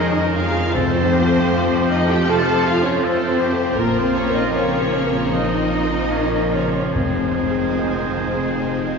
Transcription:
0.00 0.72 F2 medium
0.00 3.74 F2 medium
0.00 0.72 D#3 medium
0.00 0.74 F3 medium
0.00 0.74 F3 soft
0.00 0.72 G#3 medium
0.00 0.79 G#3 soft
0.00 0.72 C#4 medium
0.00 0.78 C#4 soft
0.00 0.20 D#4 medium
0.00 0.36 D#4 medium
0.00 0.79 D#4 soft
0.00 0.51 G#4 soft
0.00 0.74 A#4 medium
0.00 0.26 C#5 soft
0.00 0.79 C#5 medium
0.00 0.38 D#5 medium
0.00 0.41 D#5 medium
0.00 0.78 D#5 soft
0.26 0.66 C#5 soft
0.37 0.75 F4 medium
0.37 0.79 G#4 soft
0.37 0.75 F5 medium
0.51 0.76 G#4 soft
0.75 2.24 F2 medium
0.75 1.87 F2 medium
0.75 3.77 F3 medium
0.75 4.65 F3 medium
0.75 3.75 A3 medium
0.75 1.91 C4 medium
0.75 6.92 C4 medium
0.75 1.15 A4 medium
0.75 1.93 C5 medium
0.75 1.91 C5 medium
1.01 1.42 C4 soft
1.14 2.66 F4 soft
1.14 2.31 G4 medium
1.28 1.68 A4 soft
1.53 1.93 F5 medium
1.53 5.44 C6 soft
1.78 2.18 C5 medium
1.91 2.10 D#4 medium
1.91 3.41 A4 soft
1.91 2.12 D#5 medium
1.91 2.10 D#5 medium
2.03 2.43 A4 soft
2.10 2.29 G4 medium
2.10 2.31 G5 medium
2.10 2.30 G5 medium
2.28 2.68 C3 soft
2.28 3.06 F4 medium
2.28 2.66 A4 medium
2.28 2.66 A5 medium
2.28 2.69 A5 medium
2.53 2.93 C4 soft
2.66 2.84 F4 medium
2.66 2.85 F4 medium
2.66 4.93 F4 soft
2.66 2.85 F5 medium
2.77 3.17 A4 soft
2.83 3.02 C#4 medium
2.83 3.03 C#4 medium
2.83 3.04 C#5 medium
2.83 3.03 C#5 medium
3.01 3.77 C4 medium
3.01 3.78 C4 medium
3.01 3.43 A4 medium
3.01 3.77 C5 medium
3.01 3.79 C5 medium
3.01 3.43 F5 soft
3.28 3.68 C5 soft
3.41 3.79 G4 medium
3.41 3.82 A4 soft
3.52 3.78 A4 soft
3.76 6.90 A#1 medium
3.76 5.28 A#2 medium
3.76 6.98 A#2 medium
3.76 8.98 F3 medium
3.76 6.94 A#3 medium
3.76 3.97 A#3 medium
3.76 3.96 A#4 medium
3.76 4.00 A#4 medium
3.80 5.02 F4 medium
3.97 4.16 C4 medium
3.97 4.17 C4 medium
3.97 4.16 C5 medium
3.97 4.19 C5 medium
4.04 4.44 C4 soft
4.15 8.07 A#3 soft
4.15 4.35 C#4 medium
4.15 4.36 C#4 medium
4.15 4.35 C#5 medium
4.15 4.37 C#5 medium
4.30 4.70 A#4 soft
4.35 4.55 D#4 medium
4.35 4.54 D#5 medium
4.35 4.53 D#5 medium
4.40 4.57 D#4 medium
4.54 5.33 C#4 medium
4.54 6.11 A#4 soft
4.54 5.03 C#5 medium
4.54 5.30 C#5 medium
4.54 4.95 F5 soft
4.60 5.33 C#3 medium
4.81 5.05 A#4 soft
4.94 6.52 F4 soft
5.06 5.48 A#4 soft
5.31 5.74 F3 soft
5.31 8.98 F3 soft
5.31 6.13 D#4 medium
5.31 6.53 D#4 medium
5.31 6.54 D#5 medium
5.31 6.52 D#5 medium
5.36 6.54 D#4 medium
5.58 6.00 C4 soft
5.84 6.27 A#4 soft
6.11 6.54 C#4 soft
6.11 6.98 A#4 soft
6.11 6.55 F5 soft
6.38 6.83 C5 soft
6.51 6.93 C#3 medium
6.51 6.95 C#4 medium
6.51 6.92 F4 soft
6.51 8.98 F4 soft
6.51 6.97 C#5 soft
6.51 6.95 C#5 soft
6.66 6.94 A#4 soft
6.93 8.98 F1 soft
6.93 8.56 F2 soft
6.93 8.15 F2 medium
6.93 8.98 F2 soft
6.93 8.98 D#3 soft
6.93 8.98 G#3 soft
6.93 8.98 C4 soft
6.93 8.98 G#4 soft
6.93 8.98 C5 medium
7.22 7.66 C4 soft
7.37 8.98 C4 soft
7.50 7.94 G#4 soft
7.78 8.98 G#4 soft
7.78 8.62 C5 soft
7.78 8.22 D#5 soft
8.05 8.49 C5 soft
8.20 8.98 D#4 soft
8.33 8.77 G#4 soft
8.61 8.98 C3 soft
8.61 8.98 D#5 soft
8.89 8.98 C4 soft

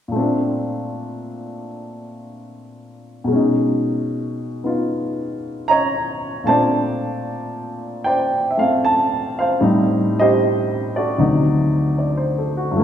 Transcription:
0.08 3.28 A#2 soft
0.08 3.30 A3 soft
0.16 3.32 C4 soft
0.16 3.33 D4 medium
3.24 6.43 B2 soft
3.24 6.45 G#3 soft
3.32 6.47 C#4 soft
3.32 4.63 D#4 soft
4.64 6.47 B3 soft
4.64 6.47 D#4 soft
4.64 6.48 F4 soft
5.68 6.44 C#5 medium
5.68 6.44 D#5 medium
5.68 6.49 A#5 medium
6.44 9.60 A#2 soft
6.44 8.56 A3 soft
6.44 8.59 C4 soft
6.44 8.09 A5 medium
6.49 9.63 D4 medium
6.49 8.01 C5 medium
6.49 8.01 D5 medium
8.04 9.39 C5 medium
8.04 9.59 D5 medium
8.04 8.14 G5 medium
8.51 8.59 E5 soft
8.57 9.61 A3 soft
8.57 9.60 C4 soft
8.57 8.82 F5 medium
8.85 9.40 A5 medium
9.39 10.20 C5 medium
9.39 10.19 F5 medium
9.61 11.19 A2 medium
9.61 11.19 G3 soft
9.61 11.19 C4 soft
9.61 11.18 D#4 medium
10.20 11.18 G4 medium
10.20 11.18 C5 medium
10.20 10.99 D#5 loud
10.96 12.49 F#4 soft
10.96 12.37 A4 soft
10.96 11.97 D5 medium
11.18 12.76 D2 medium
11.18 12.76 C3 soft
11.18 12.77 F#3 soft
11.18 12.76 D#4 medium
11.98 12.36 D5 soft
12.17 12.52 C5 soft
12.38 12.62 A4 soft
12.57 12.84 F#4 soft
12.71 12.84 G2 medium
12.71 12.84 F3 soft
12.76 12.84 A3 soft
12.76 12.84 A#3 soft

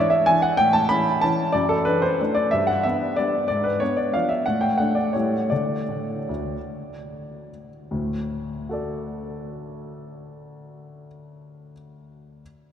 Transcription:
0.00 0.25 D4 soft
0.00 0.25 E4 soft
0.00 0.11 D5 medium
0.10 0.27 E5 medium
0.26 0.56 E3 soft
0.26 0.57 D4 soft
0.26 0.57 E4 soft
0.26 0.43 G#5 medium
0.42 0.59 F#5 medium
0.57 0.90 A2 medium
0.57 0.74 G5 medium
0.73 0.90 A5 medium
0.89 1.20 C#4 soft
0.89 1.20 E4 soft
0.89 1.22 B5 medium
1.21 1.52 E3 soft
1.21 1.52 C#4 soft
1.21 1.52 E4 soft
1.21 1.54 A5 medium
1.52 1.85 F#2 medium
1.52 1.69 D5 medium
1.69 1.86 A4 medium
1.85 2.16 D4 soft
1.85 2.02 B4 medium
2.02 2.36 C5 medium
2.21 2.49 A3 soft
2.21 2.50 D4 soft
2.35 2.51 D5 medium
2.51 2.84 G2 soft
2.51 2.68 E5 medium
2.67 2.84 F#5 medium
2.83 3.15 B3 soft
2.83 3.15 D4 soft
2.83 3.17 E5 medium
3.16 3.47 G3 soft
3.16 3.47 B3 soft
3.16 3.47 D4 soft
3.16 3.46 D5 medium
3.48 3.81 G#2 soft
3.48 3.64 D5 medium
3.64 3.81 B4 medium
3.80 4.11 B3 soft
3.80 4.12 D4 soft
3.80 3.97 C#5 medium
3.97 4.14 D5 medium
4.14 4.44 F3 soft
4.14 4.44 B3 soft
4.14 4.44 D4 soft
4.14 4.30 F5 medium
4.29 4.46 E5 medium
4.46 4.79 A2 soft
4.46 4.62 F#5 medium
4.61 4.78 G5 medium
4.78 5.11 A3 soft
4.78 5.11 D4 soft
4.78 4.96 F#5 medium
4.95 5.14 D5 medium
5.13 5.51 A2 soft
5.13 5.48 G3 soft
5.13 5.48 A3 soft
5.13 5.49 E4 soft
5.13 5.51 C#5 medium
5.50 5.78 D3 soft
5.50 5.82 A3 soft
5.50 5.82 D4 soft
5.50 7.69 D5 medium
5.89 6.17 A2 soft
6.29 6.56 D2 soft
7.91 11.07 D2 soft
7.91 11.07 A2 soft
8.69 11.71 F#4 soft
8.69 11.72 A4 soft
8.73 11.73 D5 soft

